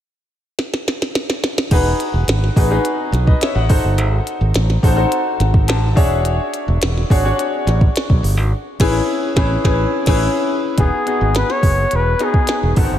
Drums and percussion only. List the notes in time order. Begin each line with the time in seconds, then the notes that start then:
0.59 snare
0.74 snare
0.88 snare
1.02 snare
1.15 snare
1.30 snare
1.44 snare
1.58 snare
1.71 kick, crash
2.00 closed hi-hat
2.28 snare, closed hi-hat
2.44 snare
2.56 kick, open hi-hat
2.85 closed hi-hat
3.14 snare, closed hi-hat
3.27 kick
3.41 snare, closed hi-hat
3.69 kick, open hi-hat
3.98 closed hi-hat
4.27 closed hi-hat
4.54 snare, closed hi-hat
4.70 snare
4.83 kick, open hi-hat
5.12 closed hi-hat
5.40 snare, closed hi-hat
5.54 kick
5.68 snare, closed hi-hat
5.97 kick, open hi-hat
6.25 closed hi-hat
6.54 closed hi-hat
6.82 snare, closed hi-hat
6.98 snare
7.10 kick, open hi-hat
7.39 closed hi-hat
7.67 snare, closed hi-hat
7.81 kick
7.96 snare, closed hi-hat
8.10 kick
8.24 open hi-hat
8.80 kick, snare, crash
9.36 kick, snare
9.64 kick, snare
10.06 kick, snare, crash
10.78 kick, closed hi-hat
11.07 closed hi-hat
11.35 snare, closed hi-hat
11.50 snare
11.63 kick, open hi-hat
11.91 closed hi-hat
12.19 snare, closed hi-hat
12.34 kick
12.47 snare, closed hi-hat
12.76 kick, open hi-hat